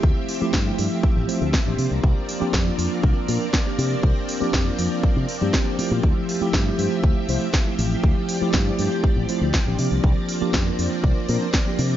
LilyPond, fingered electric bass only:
\new Staff \with { instrumentName = "Fingered electric bass" } { \clef bass \time 4/4 \key d \minor \tempo 4 = 120 d,16 r8. g,16 r16 g,16 r8 a,,16 r16 d,16 r16 a,,16 c16 c,16 | c,16 r8. f,16 r16 f,16 r16 c,16 r16 bes,16 r8. c16 r16 | c,16 r8. f,16 r16 f,16 r8 c16 r16 g,16 r8. bes,16 | d,16 r8. g,16 r16 g,16 r16 d,16 r16 c,16 r8. a,,16 r16 |
d,16 r8. g,16 r16 g,16 r8 a,,16 r16 d,16 r16 a,,16 c16 c,16 | c,16 r8. f,16 r16 f,16 r16 c,16 r16 bes,16 r8. c16 r16 | }